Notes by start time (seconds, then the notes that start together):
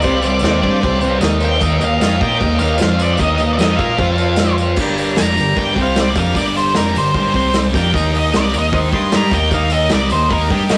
Already playing: D5
0.02 C2 C3 G3 C4 G4 C5, kick, tambourine, crash
0.07 C4
0.22 C2 C3 C4 G4 C5, tambourine, crash
0.26 G3 D5
0.39 D#2 D#3, tambourine
0.43 A#3 C4 D#4 G4 C5 D5, snare, crash
0.63 G2 G3 C4 D4 G4 C5, kick, crash
0.81 C2 C3 G3 C4 G4 C5, kick, tambourine, crash
1.01 C2 C3 G3 C4 G4 C5, tambourine, crash
1.05 C4
1.21 D#2 D#3 A#3 D#4 A#4 D#5, snare, tambourine, crash
1.25 D#4
1.39 D#4 A#4 C5, tambourine, crash
1.45 G5
1.60 D#2 D#3 A#3 D#4 A#4 D#5, kick, tambourine, crash
1.64 D#4
1.78 D#2 D#4 A#4 D#5, tambourine, crash
1.84 D#3 A#3 F5
1.98 F2 D#4 A#4 D#5, tambourine, crash
2.02 F3 C4 F4 F5, snare
2.21 A#2 A#3 D#4 F4 A#4 D#5 G5, kick, tambourine, crash
2.39 D#2 D#3 A#3 D#4 A#4 D#5, kick, tambourine, crash
2.57 D#2 D#3 D#4 A#4 D#5 F5, tambourine
2.61 A#3 D#4, crash
2.77 F3 F4 C5 F5, tambourine, crash
2.81 F2 C4 F4, snare
2.98 F4 C5 D#5, tambourine, crash
3.02 D5
3.17 D#2 D#3 D#4 A#4 D#5, kick, tambourine, crash
3.21 A#3 D#4
3.37 D#2 D#3 A#3 D#4 A#4 F5, tambourine, crash
3.53 D5
3.57 F2 F3 C4 D#4 A#4 D#5, snare, tambourine, crash
3.62 F4
3.76 A#2 A#3 D#4 F4 A#4 D#5 F5, kick, tambourine, crash
3.80 A#4
3.98 F2 F3 C4 F4 C5 F5, kick, tambourine, crash
4.18 F4 C5 G5, tambourine, crash
4.36 snare, tambourine, crash
4.41 F4 C5 D5
4.57 F4, tambourine, crash
4.62 C5 F5
4.76 G1 G2 D3 G3, kick, crash, tambourine
4.80 G4 A#4 D5
4.97 G4 A#4 D5, open hi-hat, tambourine
5.16 F1 F2 C3 F3 G4 A#5, snare, open hi-hat, tambourine
5.20 A#4 D5
5.36 G2 D3, open hi-hat, tambourine
5.40 G1 G4 A#4 D5
5.55 G1 G2 D3 G3 G4 A#4 D5 G5, kick, open hi-hat, tambourine
5.74 C2 C3 G3 C4, kick, open hi-hat, tambourine
5.78 C4 G4 C5 F5
5.96 snare, open hi-hat, tambourine
6.00 D5
6.15 F2 F3 C4 D4 F4 G4 F5, kick, open hi-hat, tambourine
6.19 A#4
6.35 G1 G2 D3 G3 D5, kick, open hi-hat, tambourine
6.55 D4 G4 A4 C5, open hi-hat, tambourine
6.74 F1 F2 C3 F3 D4 G4 A#4, snare, open hi-hat, tambourine
6.93 G1 G2 D4 G4 A#4, open hi-hat, tambourine
6.97 D3 C5
7.14 G1 G2 D3 G3 D4 G4 A#4 C5, kick, open hi-hat, tambourine
7.34 C2 C3 G3 C4 G4 C5, kick, open hi-hat, tambourine
7.53 snare, open hi-hat, tambourine
7.72 F2 F3 D4 G4 A#4 G5, kick, open hi-hat, tambourine
7.76 C4 F4
7.93 D#2 D#3 A#3 D#4 A#4 D#5, kick, open hi-hat, tambourine
8.13 D#4 A#4 D#5, open hi-hat
8.17 D#5
8.33 C2 C3 G3 C4 D#4 A#4 D5 D#5, snare, open hi-hat, tambourine
8.52 D#2 D#3 A#3 D#4 A#4 F5, open hi-hat, tambourine
8.58 D#5
8.72 D#2 D#3 A#3 D#4 A#4 C5, kick, open hi-hat, tambourine
8.92 G2 G3 D4 D#4 G4 A#4 D#5 C6, kick, open hi-hat, tambourine
9.12 G2 G3 D4 D#4 A#4 D#5, snare, open hi-hat, tambourine
9.16 G4 A#5
9.31 D#2 D#4 A#4 F5 G5, kick, open hi-hat, tambourine
9.35 D#3 A#3 D#4
9.50 D#2 D#4 A#4 D#5 F5, kick, open hi-hat, tambourine
9.55 D#3 A#3 D#4
9.70 D#5, open hi-hat, tambourine
9.76 D#4 A#4 D#5
9.89 C2 C3 G3 D5, snare, open hi-hat, tambourine
9.94 C4 D#4 A#4 D#5
10.10 D#2 D#3 A#3 C5, open hi-hat, tambourine
10.14 D#4 A#4 D#5
10.30 D#2 D#3 A#3 D#4 A#4 D#5, kick, open hi-hat, tambourine
10.50 G2 G3 D4 D#4 G4 A#4 D#5, kick, open hi-hat, tambourine
10.67 G2 G3 D#4 A#4 D#5, snare, open hi-hat, tambourine
10.71 D4 G4